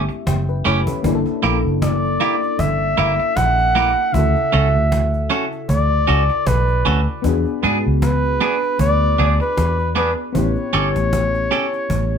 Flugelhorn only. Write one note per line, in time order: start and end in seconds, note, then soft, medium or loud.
1.83 2.61 D5 medium
2.59 3.38 E5 loud
3.36 4.15 F#5 loud
4.13 5.30 E5 loud
5.70 6.49 D5 loud
6.47 7.08 B4 loud
8.03 8.76 B4 loud
8.81 9.37 D5 loud
9.41 9.93 B4 loud
9.98 10.14 B4 loud
10.35 12.18 C#5 loud